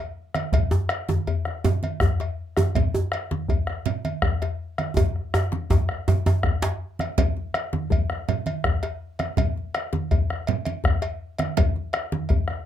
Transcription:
0.34 bombo rim medium
0.34 cowbell medium
0.34 djembe slap soft
0.34 high conga medium
0.52 bombo low loud
0.52 cowbell medium
0.52 low conga medium
0.52 djembe bass medium
0.71 djembe tone medium
0.89 bombo rim loud
0.89 cowbell soft
0.89 high conga soft
1.09 bombo rim soft
1.09 djembe slap medium
1.09 high conga medium
1.09 djembe tone medium
1.27 cowbell soft
1.27 high conga soft
1.27 djembe bass medium
1.45 bombo rim medium
1.45 high conga soft
1.64 cowbell soft
1.64 djembe tone medium
1.64 low conga medium
1.83 cowbell soft
1.83 djembe slap soft
1.83 high conga medium
2.00 bombo rim loud
2.00 bombo low medium
2.00 djembe tone medium
2.00 high conga soft
2.00 djembe bass medium
2.20 cowbell soft
2.20 djembe slap medium
2.20 djembe tone medium
2.57 bombo rim medium
2.57 cowbell soft
2.57 djembe tone loud
2.57 high conga medium
2.75 bombo low medium
2.75 cowbell medium
2.75 djembe bass medium
2.75 low conga medium
2.94 djembe slap soft
2.94 djembe tone medium
2.94 high conga soft
3.12 bombo rim medium
3.12 cowbell soft
3.12 high conga soft
3.31 bombo rim soft
3.31 djembe slap medium
3.31 high conga medium
3.31 djembe tone medium
3.48 bombo low loud
3.48 cowbell soft
3.48 high conga soft
3.48 djembe bass medium
3.67 bombo rim medium
3.67 high conga soft
3.86 cowbell soft
3.86 djembe slap soft
3.86 low conga medium
4.05 cowbell soft
4.05 djembe slap soft
4.05 high conga medium
4.22 bombo rim loud
4.22 bombo low loud
4.22 high conga soft
4.22 djembe bass medium
4.42 cowbell soft
4.42 djembe slap medium
4.42 djembe tone medium
4.78 bombo rim medium
4.78 cowbell soft
4.78 djembe slap soft
4.78 high conga medium
4.96 bombo low loud
4.96 cowbell medium
4.96 djembe slap soft
4.96 djembe tone loud
4.96 djembe bass medium
4.96 low conga medium
5.16 bombo rim soft
5.34 bombo rim loud
5.34 cowbell soft
5.34 djembe tone loud
5.52 djembe slap medium
5.52 djembe tone medium
5.52 high conga medium
5.70 bombo low loud
5.70 cowbell soft
5.70 djembe slap soft
5.70 djembe tone loud
5.70 high conga soft
5.70 djembe bass medium
5.89 bombo rim medium
5.89 djembe slap soft
6.08 cowbell soft
6.08 djembe tone medium
6.08 low conga medium
6.26 bombo rim soft
6.26 cowbell soft
6.26 high conga medium
6.26 djembe tone loud
6.43 bombo rim medium
6.43 bombo low medium
6.43 djembe bass medium
6.62 cowbell soft
6.62 djembe slap loud
6.62 djembe slap medium
6.62 djembe tone medium
6.62 high conga soft
6.99 bombo rim medium
6.99 cowbell soft
6.99 high conga medium
7.18 bombo low loud
7.18 cowbell medium
7.18 djembe bass medium
7.18 low conga medium
7.37 djembe slap soft
7.37 high conga soft
7.54 bombo rim loud
7.54 cowbell medium
7.54 high conga soft
7.73 bombo rim soft
7.73 djembe slap medium
7.73 djembe tone medium
7.73 high conga medium
7.90 bombo low loud
7.90 cowbell medium
7.90 high conga soft
7.90 djembe bass medium
8.10 bombo rim medium
8.10 high conga soft
8.28 cowbell medium
8.28 djembe slap soft
8.28 low conga medium
8.46 cowbell medium
8.46 djembe slap soft
8.46 high conga medium
8.64 bombo rim loud
8.64 bombo low medium
8.64 high conga soft
8.64 djembe bass medium
8.83 cowbell medium
8.83 djembe slap medium
8.83 djembe tone medium
9.19 bombo rim medium
9.19 cowbell medium
9.19 djembe slap soft
9.19 high conga medium
9.37 bombo low medium
9.37 cowbell medium
9.37 djembe bass medium
9.37 low conga medium
9.56 djembe slap soft
9.56 high conga soft
9.74 bombo rim medium
9.74 cowbell medium
9.74 high conga soft
9.93 bombo rim soft
9.93 djembe slap medium
9.93 djembe tone medium
9.93 high conga medium
10.11 bombo low loud
10.11 cowbell medium
10.11 high conga soft
10.11 djembe bass medium
10.30 bombo rim medium
10.30 high conga soft
10.47 cowbell medium
10.47 djembe slap soft
10.47 low conga medium
10.65 cowbell medium
10.65 djembe slap soft
10.65 high conga medium
10.84 bombo rim medium
10.84 bombo low loud
10.84 high conga soft
10.84 djembe bass medium
11.02 cowbell medium
11.02 djembe slap medium
11.02 djembe tone medium
11.39 bombo rim medium
11.39 cowbell medium
11.39 djembe slap soft
11.39 high conga medium
11.57 bombo low loud
11.57 cowbell medium
11.57 low conga medium
11.57 djembe bass medium
11.76 djembe slap soft
11.76 high conga soft
11.93 bombo rim loud
11.93 cowbell medium
11.93 high conga soft
12.12 bombo rim soft
12.12 djembe slap medium
12.12 high conga medium
12.12 djembe tone medium
12.29 bombo low loud
12.29 cowbell soft
12.29 high conga soft
12.29 djembe bass medium
12.48 bombo rim medium
12.48 high conga soft

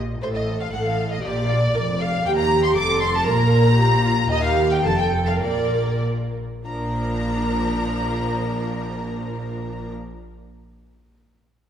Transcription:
0.00 0.13 A#1 medium
0.00 0.13 A#2 medium
0.21 0.64 A1 medium
0.21 0.64 A2 medium
0.21 0.71 A4 loud
0.21 0.27 C5 medium
0.21 0.28 C5 loud
0.35 0.43 D#5 medium
0.35 0.60 D#5 loud
0.61 0.66 F5 medium
0.61 0.73 F5 loud
0.72 1.16 A1 medium
0.72 1.15 A2 medium
0.72 1.23 A4 loud
0.72 0.86 F#5 loud
0.72 0.78 F#5 loud
0.85 1.11 F5 loud
0.85 1.11 F5 medium
1.12 1.24 D#5 loud
1.12 1.25 D#5 medium
1.23 1.67 A#1 loud
1.23 1.66 A#2 loud
1.23 1.49 G4 medium
1.23 1.99 D5 loud
1.23 2.01 D5 loud
1.49 1.57 F4 medium
1.74 2.17 F1 loud
1.74 2.17 F2 medium
1.74 1.82 A#4 loud
1.99 2.07 A4 loud
1.99 2.25 F5 loud
1.99 2.26 F5 loud
2.25 2.73 D#2 loud
2.25 2.75 G4 loud
2.25 2.31 G5 loud
2.25 2.39 G5 loud
2.38 2.63 A#5 loud
2.63 2.76 C6 loud
2.63 2.69 C6 loud
2.75 3.27 F1 loud
2.75 3.27 F2 loud
2.75 3.28 A4 loud
2.75 3.01 D6 loud
2.75 3.02 D6 loud
3.01 3.06 C6 loud
3.01 3.15 C6 loud
3.15 3.28 A5 loud
3.27 4.31 A#1 loud
3.27 4.31 A#2 loud
3.27 3.79 A#4 loud
3.27 4.28 A#5 loud
3.27 4.31 A#5 loud
3.78 4.04 G4 loud
4.04 4.30 F4 medium
4.30 4.84 D#2 loud
4.30 4.85 G4 loud
4.30 4.44 D#5 loud
4.44 4.71 F5 loud
4.71 4.77 G5 loud
4.71 4.86 G5 loud
4.84 5.43 F1 loud
4.84 5.43 F2 loud
4.84 5.41 A4 loud
4.84 4.98 A5 loud
4.84 5.00 A5 loud
4.97 5.05 G5 loud
4.97 5.29 G5 loud
5.27 5.33 F5 loud
5.27 5.35 F5 loud
5.42 6.42 A#1 medium
5.42 6.42 A#2 medium
5.42 6.34 A#4 loud
5.42 6.02 D5 loud
5.42 6.03 D5 medium
6.65 9.89 A#1 medium
6.65 9.89 A#2 medium
6.65 9.89 F3 loud
6.65 9.89 D4 medium
6.65 9.89 A#4 medium
6.65 9.89 A#5 loud

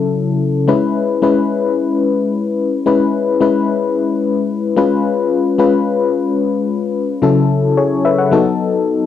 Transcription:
0.00 0.70 C#3 medium
0.00 0.71 F#3 medium
0.00 0.68 C#4 medium
0.00 0.68 E4 medium
0.00 0.71 A4 medium
0.68 1.06 G#3 medium
0.68 1.06 C#4 medium
0.68 1.06 E4 medium
0.68 1.06 B4 medium
1.22 1.98 G#3 medium
1.22 1.98 C#4 medium
1.22 1.98 E4 medium
1.22 1.98 B4 medium
2.86 3.24 G#3 medium
2.86 3.24 C#4 medium
2.86 3.24 E4 medium
2.86 3.24 B4 medium
3.41 4.16 G#3 medium
3.41 4.16 C#4 medium
3.41 4.17 E4 medium
3.41 4.17 B4 medium
4.77 5.43 G#3 medium
4.77 5.43 C#4 medium
4.77 5.43 F4 medium
4.77 5.43 B4 medium
5.58 6.34 G#3 medium
5.58 6.34 C#4 medium
5.58 6.34 F4 medium
5.58 6.35 B4 medium
7.22 7.60 C#3 medium
7.22 7.60 F#3 medium
7.22 7.60 C#4 medium
7.22 7.60 E4 medium
7.22 7.61 A4 medium
7.77 8.04 G#4 medium
7.77 8.03 C#5 medium
8.05 8.18 B4 medium
8.05 8.18 E5 medium
8.18 8.45 C#5 soft
8.18 8.44 F#5 medium
8.31 9.06 F#3 medium
8.31 9.06 B3 medium
8.31 9.06 D#4 medium
8.31 9.06 A4 medium

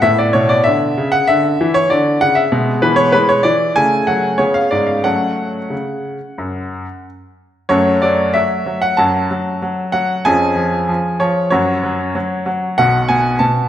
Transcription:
0.02 0.28 A2 medium
0.02 2.47 B3 soft
0.02 0.19 E5 medium
0.18 0.35 D5 medium
0.33 0.60 B2 medium
0.33 0.50 C#5 medium
0.49 0.66 D5 medium
0.64 0.91 D3 medium
0.64 1.12 E5 medium
0.98 1.23 C#3 medium
1.12 1.28 F#5 medium
1.27 1.54 D3 medium
1.27 1.75 E5 medium
1.61 1.85 E3 medium
1.74 1.91 C#5 medium
1.90 2.16 D3 medium
1.90 2.21 D5 medium
2.21 2.46 C#3 medium
2.21 2.37 F#5 medium
2.35 2.51 E5 medium
2.52 2.77 B2 medium
2.52 3.12 G#3 soft
2.82 3.07 E3 medium
2.82 2.98 B4 medium
2.96 3.13 C#5 medium
3.12 3.39 G#3 medium
3.12 3.29 B4 medium
3.29 3.45 C#5 medium
3.43 3.70 E3 medium
3.43 3.76 D5 medium
3.76 4.02 C#3 medium
3.76 4.36 A3 soft
3.76 4.08 G#5 medium
4.07 4.34 F#3 soft
4.07 4.39 F#5 medium
4.38 4.65 C#3 soft
4.38 5.00 B3 soft
4.38 4.55 C#5 medium
4.54 4.71 F5 medium
4.71 4.98 G#2 soft
4.71 4.88 D5 medium
4.87 5.04 F5 medium
5.04 5.51 F#3 soft
5.04 5.58 A3 soft
5.04 5.58 C#4 soft
5.04 7.04 F#5 medium
5.70 6.17 C#3 soft
6.38 6.84 F#2 soft
7.69 8.01 F#2 medium
7.69 8.01 F#3 medium
7.69 10.21 A3 soft
7.69 10.22 C#4 soft
7.69 8.02 C#5 medium
8.02 8.34 F#3 soft
8.02 8.34 D5 medium
8.34 8.65 F#3 soft
8.34 8.82 E5 medium
8.66 8.97 F#3 soft
8.82 8.98 F#5 medium
8.97 9.29 F#2 medium
8.97 9.29 F#3 soft
8.97 9.93 A5 medium
9.31 9.61 F#3 soft
9.62 9.92 F#3 soft
9.92 10.24 F#3 soft
9.92 10.25 F#5 medium
10.25 10.56 F2 medium
10.25 10.54 F3 medium
10.25 11.49 C#4 soft
10.25 11.48 G#4 soft
10.25 11.20 G#5 medium
10.56 10.87 F3 medium
10.89 11.19 F3 soft
11.20 11.51 F3 medium
11.20 11.49 C#5 medium
11.50 11.83 F#2 soft
11.50 11.82 F#3 medium
11.50 12.74 C#4 soft
11.50 12.74 F#4 soft
11.50 12.46 C#5 medium
11.83 12.14 F#3 soft
12.15 12.44 F#3 soft
12.46 12.77 F#3 soft
12.78 13.08 B1 medium
12.78 13.08 B2 medium
12.78 13.69 B3 soft
12.78 13.69 F#4 soft
12.78 13.09 F#5 medium
13.09 13.38 B2 medium
13.09 13.40 G#5 medium
13.39 13.69 B2 soft
13.39 13.69 A5 medium

